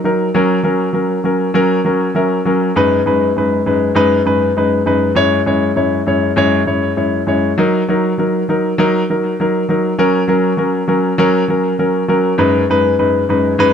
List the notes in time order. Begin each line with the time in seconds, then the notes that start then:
0.04 F#3 D#4 A#4
0.34 F#3 C#4 A#4
0.63 F#3 C#4 A#4
0.93 F#3 C#4 A#4
1.24 F#3 C#4 A#4
1.54 F#3 C#4 A#4
1.84 F#3 C#4 A#4
2.14 F#3 C#4 A#4 E5
2.45 F#3 C#4 A#4
2.76 F#2 G#3 D#4 B4
3.05 F#2 G#3 D#4 B4
3.36 F#2 G#3 D#4 B4
3.66 F#2 G#3 D#4 B4
3.95 F#2 G#3 D#4 B4
4.25 F#2 G#3 D#4 B4
4.56 F#2 G#3 D#4 B4
4.86 F#2 G#3 D#4 B4
5.15 F#2 G#3 E4 C#5
5.46 F#2 G#3 E4 C#5
5.75 F#2 G#3 E4 C#5
6.06 F#2 G#3 E4 C#5
6.36 F#2 G#3 E4 C#5
6.66 F#2 G#3 E4 C#5
6.96 F#2 G#3 E4 C#5
7.26 F#2 G#3 E4 C#5
7.58 F#3 D#4 A#4
7.88 F#3 D#4 A#4
8.18 F#3 D#4 A#4
8.49 F#3 D#4 A#4
8.78 F#3 D#4 A#4
9.10 F#3 D#4 A#4
9.40 F#3 D#4 A#4
9.69 F#3 D#4 A#4
9.98 F#3 C#4 A#4
10.28 F#3 C#4 A#4
10.57 F#3 C#4 A#4
10.88 F#3 C#4 A#4
11.18 F#3 C#4 A#4
11.48 F#3 C#4 A#4
11.79 F#3 C#4 A#4
12.08 F#3 C#4 A#4
12.38 F#2 G#3 D#4 B4
12.69 F#2 G#3 D#4 B4
12.99 F#2 G#3 D#4 B4
13.29 F#2 G#3 D#4 B4
13.58 F#2 G#3 D#4 B4